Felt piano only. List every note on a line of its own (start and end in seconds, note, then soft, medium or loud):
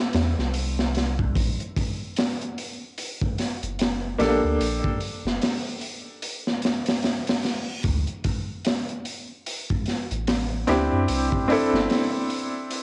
0.00 1.33 C4 medium
0.00 1.33 D4 medium
0.00 1.34 E4 medium
0.00 1.35 A4 loud
4.18 4.96 A#3 loud
4.18 4.96 D4 medium
4.18 4.97 G4 medium
4.18 4.97 A4 loud
10.67 11.45 C4 loud
10.67 11.45 D4 medium
10.67 11.45 E4 medium
10.67 11.46 G4 loud
11.48 12.83 C4 medium
11.48 12.83 D4 medium
11.48 12.83 E4 medium
11.52 12.83 A4 loud